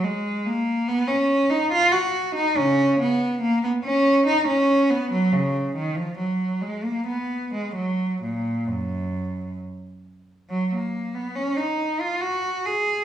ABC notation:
X:1
M:3/4
L:1/16
Q:1/4=70
K:F#
V:1 name="Cello"
G,2 A,2 B, C2 D E F2 D | [C,C]2 B,2 A, B, C2 D C2 B, | F, C,2 D, E, F,2 G, A, B,2 G, | F,2 A,,2 F,,4 z4 |
F, A,2 B, C D2 E F2 G2 |]